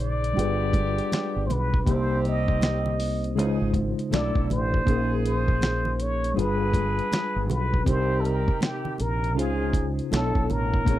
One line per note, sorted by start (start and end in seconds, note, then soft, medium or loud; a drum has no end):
0.00 0.33 A#1 loud
0.00 0.32 A#2 medium
0.00 0.33 C#3 medium
0.00 0.33 F3 medium
0.00 0.34 D#4 medium
0.00 0.35 G#4 medium
0.00 0.35 C5 medium
0.00 1.48 D5 loud
0.24 closed hi-hat medium
0.33 0.99 G1 loud
0.33 1.82 G3 medium
0.33 1.47 B3 medium
0.33 1.83 D4 medium
0.33 1.47 D4 medium
0.33 1.84 F4 medium
0.33 1.47 G4 medium
0.33 muted conga soft
0.39 1.85 G#4 medium
0.39 1.85 B4 medium
0.39 closed hi-hat medium
0.73 kick medium
0.73 closed hi-hat medium
0.73 muted conga soft
0.73 high conga medium
0.98 closed hi-hat soft
1.12 snare loud
1.12 closed hi-hat medium
1.12 muted conga soft
1.12 high conga medium
1.36 1.50 G1 medium
1.47 1.81 B1 medium
1.47 1.54 C5 medium
1.47 muted conga soft
1.47 low conga medium
1.51 1.84 B4 medium
1.51 closed hi-hat medium
1.74 kick medium
1.84 3.38 C2 loud
1.84 3.32 C3 medium
1.84 3.33 A#3 medium
1.84 2.97 C4 medium
1.84 2.97 D#4 medium
1.84 3.34 D#4 medium
1.84 2.97 G4 medium
1.84 1.92 B4 medium
1.84 kick medium
1.84 closed hi-hat medium
1.84 muted conga soft
1.84 low conga medium
1.89 3.35 G4 medium
1.89 2.26 C5 loud
1.89 3.36 C5 medium
2.25 3.34 D#5 medium
2.25 closed hi-hat medium
2.25 muted conga soft
2.48 kick medium
2.61 snare loud
2.61 closed hi-hat medium
2.61 muted conga soft
2.61 high conga medium
2.86 low conga medium
2.99 open hi-hat medium
2.99 muted conga soft
3.24 closed hi-hat medium
3.35 3.57 C#2 medium
3.35 4.11 C#3 medium
3.35 4.11 G#3 medium
3.35 3.73 D#4 medium
3.35 4.12 D#4 medium
3.35 3.45 E4 medium
3.35 3.73 F4 medium
3.35 3.73 G#4 medium
3.35 4.13 C5 medium
3.35 closed hi-hat medium
3.35 muted conga soft
3.45 4.16 F4 medium
3.62 3.92 G#1 medium
3.74 kick medium
3.74 closed hi-hat medium
3.74 muted conga soft
3.74 high conga medium
3.99 closed hi-hat soft
4.10 4.32 B1 medium
4.10 4.86 B2 medium
4.10 4.86 A3 medium
4.10 4.87 D4 medium
4.10 4.48 E4 medium
4.10 4.87 E4 medium
4.10 4.48 F#4 medium
4.10 4.48 A4 medium
4.10 4.88 D5 medium
4.10 4.48 D5 medium
4.10 snare loud
4.10 closed hi-hat medium
4.10 muted conga soft
4.10 high conga medium
4.35 4.47 B1 medium
4.35 kick loud
4.50 4.81 A1 medium
4.50 5.21 C5 medium
4.50 closed hi-hat medium
4.50 low conga medium
4.74 kick medium
4.84 6.33 A#1 loud
4.84 6.32 A#2 medium
4.84 6.33 A#3 medium
4.84 6.33 C#4 medium
4.84 5.97 D#4 medium
4.84 5.97 F4 medium
4.84 5.97 G#4 medium
4.84 kick medium
4.88 6.34 D#4 medium
4.88 6.35 G#4 medium
4.88 6.36 A#4 medium
4.88 closed hi-hat medium
4.88 muted conga soft
4.88 low conga medium
5.25 6.03 C5 medium
5.25 closed hi-hat medium
5.25 muted conga soft
5.48 kick medium
5.61 snare loud
5.61 closed hi-hat medium
5.61 high conga medium
5.85 low conga medium
6.00 6.40 C#5 medium
6.00 closed hi-hat medium
6.24 closed hi-hat medium
6.33 7.82 G3 medium
6.33 7.83 D4 medium
6.33 7.47 D4 medium
6.33 7.47 F4 medium
6.33 7.84 F4 medium
6.33 7.47 G#4 medium
6.33 muted conga soft
6.37 6.99 G1 medium
6.37 7.85 G#4 medium
6.37 7.50 B4 medium
6.37 7.86 B4 medium
6.37 closed hi-hat medium
6.73 kick medium
6.73 closed hi-hat medium
6.73 muted conga soft
6.73 high conga medium
6.99 closed hi-hat soft
7.12 snare loud
7.12 closed hi-hat medium
7.12 high conga medium
7.36 7.50 G1 medium
7.50 7.81 B1 loud
7.50 7.90 B4 medium
7.50 closed hi-hat medium
7.50 muted conga soft
7.50 low conga medium
7.74 kick medium
7.83 8.49 C2 loud
7.83 9.32 C3 medium
7.83 9.33 C4 medium
7.83 8.97 C4 medium
7.83 8.97 D#4 medium
7.83 9.34 D#4 medium
7.83 8.97 G4 medium
7.83 kick medium
7.83 low conga medium
7.88 9.35 G4 medium
7.88 9.35 A#4 medium
7.88 8.22 C5 loud
7.88 closed hi-hat medium
8.21 8.27 A4 medium
8.25 8.62 A#4 medium
8.25 closed hi-hat medium
8.25 muted conga soft
8.48 kick loud
8.61 9.03 G4 medium
8.61 snare loud
8.61 closed hi-hat medium
8.61 high conga medium
8.85 low conga medium
8.98 9.38 A#1 medium
8.98 9.40 A#4 loud
8.98 closed hi-hat medium
8.98 muted conga soft
9.24 closed hi-hat soft
9.35 9.99 C#2 medium
9.35 10.11 C#3 medium
9.35 9.73 G#3 medium
9.35 9.73 C4 medium
9.35 10.11 C#4 medium
9.35 10.12 D#4 medium
9.35 9.73 F4 medium
9.35 10.12 F4 medium
9.35 9.88 G#4 medium
9.35 10.13 C5 medium
9.39 closed hi-hat medium
9.73 kick medium
9.73 closed hi-hat medium
9.73 muted conga soft
9.73 high conga medium
9.99 closed hi-hat soft
10.11 10.32 B1 loud
10.11 10.86 B2 medium
10.11 10.86 B3 medium
10.11 10.87 D4 medium
10.11 10.48 E4 medium
10.11 10.87 E4 medium
10.11 10.48 F#4 medium
10.11 10.48 A4 medium
10.11 10.52 A4 medium
10.11 10.88 C#5 medium
10.11 10.88 A5 medium
10.11 snare loud
10.11 closed hi-hat medium
10.11 muted conga soft
10.11 high conga medium
10.35 10.47 B1 medium
10.35 kick loud
10.50 10.81 A1 medium
10.50 10.99 A#4 loud
10.50 closed hi-hat medium
10.50 muted conga soft
10.50 low conga medium
10.74 kick medium
10.83 10.99 A#1 loud
10.83 10.99 A#2 medium
10.83 10.99 A#3 medium
10.83 10.95 C4 soft
10.83 10.99 D#4 medium
10.83 10.99 F4 medium
10.83 10.99 A#4 medium
10.83 kick loud
10.87 10.99 D#4 medium
10.87 10.99 G#4 medium
10.87 10.99 C#5 medium
10.87 closed hi-hat medium
10.87 muted conga soft
10.87 low conga medium
10.93 10.99 C#4 medium